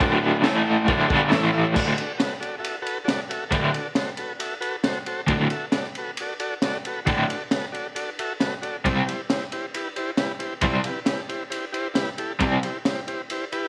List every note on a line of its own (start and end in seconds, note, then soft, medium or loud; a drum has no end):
0.00 0.43 D2 loud
0.00 0.43 A2 loud
0.00 0.45 D3 loud
0.00 0.15 F#4 loud
0.00 0.15 A4 medium
0.00 0.15 D5 loud
0.00 kick loud
0.00 crash medium
0.22 0.37 F#4 medium
0.22 0.37 A4 medium
0.22 0.37 B4 medium
0.44 0.87 A2 medium
0.44 0.88 E3 loud
0.44 0.88 A3 loud
0.44 0.59 E4 medium
0.44 0.59 A4 medium
0.44 0.58 E5 medium
0.44 snare loud
0.44 crash medium
0.64 0.80 E4 medium
0.64 0.80 A4 medium
0.64 0.79 G5 medium
0.85 1.09 D2 medium
0.85 1.10 A2 loud
0.85 1.10 D3 loud
0.85 1.01 F#4 medium
0.85 1.02 A4 medium
0.85 1.01 D5 medium
0.85 kick loud
0.85 crash medium
1.08 1.31 G2 medium
1.08 1.32 D3 medium
1.08 1.23 F#4 loud
1.08 1.23 A4 loud
1.08 1.24 D5 loud
1.08 kick loud
1.12 1.33 G3 medium
1.29 1.75 A2 medium
1.29 1.45 E4 loud
1.29 1.45 A4 loud
1.29 1.45 E5 loud
1.29 snare loud
1.29 crash medium
1.33 1.76 E3 medium
1.33 1.77 A3 loud
1.53 1.68 E4 medium
1.53 1.68 A4 medium
1.53 1.68 E5 medium
1.74 1.94 D2 medium
1.74 1.94 A2 loud
1.74 1.95 D3 medium
1.74 1.89 F#4 loud
1.74 1.89 A4 medium
1.74 1.89 D5 loud
1.74 kick loud
1.74 crash loud
1.98 2.12 F#4 medium
1.98 2.12 A4 medium
1.98 2.13 D5 medium
1.98 ride medium
2.18 2.33 F#4 medium
2.18 2.34 A4 medium
2.18 2.34 B4 medium
2.18 snare loud
2.18 ride medium
2.40 2.56 F#4 medium
2.40 2.55 A4 medium
2.40 2.55 D5 medium
2.40 ride medium
2.58 2.76 F#4 medium
2.58 2.75 A4 medium
2.58 2.76 E5 medium
2.64 ride medium
2.82 2.98 F#4 loud
2.82 2.98 A4 medium
2.82 2.98 B4 loud
2.87 ride medium
3.04 3.21 F#4 loud
3.04 3.21 A4 loud
3.04 3.21 D5 loud
3.04 snare loud
3.09 ride medium
3.29 3.44 F#4 medium
3.29 3.44 A4 medium
3.29 3.44 E5 medium
3.29 ride medium
3.50 3.70 D2 medium
3.50 3.70 A2 loud
3.50 3.71 D3 loud
3.50 3.66 F#4 loud
3.50 3.65 A4 medium
3.50 3.66 D5 loud
3.50 kick loud
3.50 ride medium
3.71 3.87 F#4 medium
3.71 3.88 A4 medium
3.71 3.88 D5 medium
3.71 ride medium
3.95 4.11 F#4 medium
3.95 4.10 A4 medium
3.95 4.10 C5 medium
3.95 snare loud
3.95 ride medium
4.17 4.33 F#4 medium
4.17 4.33 A4 medium
4.17 4.33 B4 medium
4.17 ride medium
4.39 4.54 F#4 medium
4.39 4.54 A4 medium
4.39 4.55 E5 medium
4.39 ride medium
4.61 4.76 F#4 loud
4.61 4.76 A4 medium
4.61 4.76 B4 loud
4.61 ride medium
4.83 4.99 F#4 loud
4.83 4.98 A4 medium
4.83 4.99 C5 loud
4.83 snare loud
4.83 ride medium
5.06 5.21 F#4 medium
5.06 5.22 A4 medium
5.06 5.22 C5 loud
5.06 ride medium
5.27 5.46 D2 medium
5.27 5.47 A2 medium
5.27 5.47 D3 medium
5.27 5.44 F#4 medium
5.27 5.43 A4 medium
5.27 5.44 D5 loud
5.27 kick medium
5.27 ride medium
5.50 5.65 F#4 medium
5.50 5.66 A4 medium
5.50 5.66 E5 loud
5.50 ride medium
5.71 5.87 F#4 medium
5.71 5.87 A4 medium
5.71 5.87 D5 medium
5.71 snare loud
5.71 ride medium
5.95 6.11 F#4 medium
5.95 6.11 A4 medium
5.95 6.11 B4 medium
5.95 ride medium
6.17 6.34 F#4 medium
6.17 ride medium
6.22 6.34 A4 medium
6.22 6.34 D5 medium
6.40 6.55 F#4 loud
6.40 6.54 A4 medium
6.40 6.54 D5 loud
6.40 ride medium
6.62 6.78 F#4 loud
6.62 6.78 A4 medium
6.62 6.78 D5 loud
6.62 snare loud
6.62 ride medium
6.85 7.00 F#4 medium
6.85 7.00 A4 medium
6.85 7.00 B4 medium
6.85 ride medium
7.05 7.25 D2 medium
7.05 7.25 A2 medium
7.05 7.26 D3 medium
7.05 7.20 F#4 loud
7.05 7.21 A4 medium
7.05 7.20 D5 loud
7.05 kick loud
7.05 ride medium
7.27 7.42 F#4 medium
7.27 7.43 A4 medium
7.27 7.43 D5 medium
7.27 ride medium
7.51 7.66 F#4 medium
7.51 7.66 A4 medium
7.51 7.66 B4 medium
7.51 snare loud
7.51 ride loud
7.72 7.87 F#4 medium
7.72 7.88 A4 medium
7.72 7.87 D5 medium
7.72 ride medium
7.95 8.10 F#4 medium
7.95 8.10 A4 medium
7.95 8.10 D5 medium
7.95 ride medium
8.19 8.33 F#4 loud
8.19 8.33 A4 medium
8.19 8.33 E5 loud
8.19 ride medium
8.40 8.55 F#4 loud
8.40 8.54 A4 medium
8.40 8.54 B4 loud
8.40 snare loud
8.40 ride medium
8.62 8.76 F#4 medium
8.62 8.77 A4 medium
8.62 8.77 D5 medium
8.62 ride medium
8.85 9.03 C3 medium
8.85 9.03 G3 loud
8.85 9.04 C4 loud
8.85 8.99 E4 loud
8.85 8.99 G4 medium
8.85 9.00 C5 loud
8.85 kick loud
8.85 ride medium
9.06 9.21 E4 medium
9.06 9.21 G4 medium
9.06 9.21 C5 medium
9.06 ride medium
9.29 9.43 E4 medium
9.29 9.44 G4 medium
9.29 9.44 C5 medium
9.29 snare loud
9.29 ride medium
9.52 9.66 E4 medium
9.52 9.66 G4 medium
9.52 9.66 C5 medium
9.52 ride medium
9.74 9.88 E4 medium
9.74 9.89 G4 medium
9.74 9.88 B4 medium
9.74 ride medium
9.96 10.11 E4 loud
9.96 10.10 G4 medium
9.96 10.11 C5 loud
9.96 ride medium
10.17 10.32 E4 loud
10.17 10.32 G4 loud
10.17 10.32 B4 loud
10.17 snare loud
10.17 ride medium
10.39 10.54 E4 medium
10.39 10.54 G4 medium
10.39 10.54 C5 medium
10.39 ride medium
10.61 10.80 C3 medium
10.61 10.81 G3 loud
10.61 10.81 C4 loud
10.61 10.77 E4 medium
10.61 10.76 G4 medium
10.61 10.77 C5 loud
10.61 kick loud
10.61 ride medium
10.84 10.99 E4 medium
10.84 11.00 G4 medium
10.84 11.00 B4 medium
10.84 ride medium
11.05 11.20 E4 medium
11.05 11.21 G4 medium
11.05 11.20 B4 medium
11.05 snare loud
11.05 ride loud
11.29 11.43 E4 medium
11.29 11.43 G4 medium
11.29 11.43 C5 medium
11.29 ride medium
11.50 11.65 E4 medium
11.50 11.65 G4 medium
11.50 11.65 C5 medium
11.50 ride medium
11.72 11.88 E4 loud
11.72 11.87 G4 medium
11.72 11.88 C5 loud
11.72 ride medium
11.94 12.09 E4 loud
11.94 12.10 G4 loud
11.94 12.10 B4 loud
11.94 snare loud
11.94 ride medium
12.18 12.33 E4 medium
12.18 12.32 G4 medium
12.18 12.33 A4 medium
12.18 ride medium
12.40 12.58 C3 medium
12.40 12.59 G3 medium
12.40 12.59 C4 loud
12.40 12.55 E4 loud
12.40 12.55 G4 medium
12.40 12.56 D5 loud
12.40 kick loud
12.40 ride medium
12.63 12.79 E4 medium
12.63 12.78 G4 medium
12.63 12.78 C5 medium
12.63 ride medium
12.85 13.00 E4 medium
12.85 13.00 G4 medium
12.85 13.01 C5 medium
12.85 snare loud
12.85 ride medium
13.07 13.21 E4 medium
13.07 13.22 G4 medium
13.07 13.22 C5 medium
13.07 ride medium
13.30 13.44 E4 medium
13.30 13.45 G4 medium
13.30 13.45 C5 loud
13.30 ride medium
13.52 13.66 E4 loud
13.52 13.67 G4 loud
13.52 13.66 B4 loud
13.52 ride medium